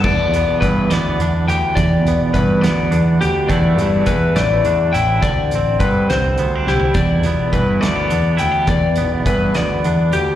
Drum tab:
CC |x-----------|------------|------------|------------|
HH |--x-x-x-x-x-|x-x-x-x-x-x-|x-x-x-x-x-x-|x-x-x-x-x---|
SD |------o-----|------o-----|------o-----|------o---o-|
FT |------------|------------|------------|-----------o|
BD |o---o-------|o---o-------|o---o-------|o---o-------|

CC |------------|------------|
HH |x-x-x-x-x-x-|x-x-x-x-x-x-|
SD |------o-----|------o-----|
FT |------------|------------|
BD |o---o-------|o---o-------|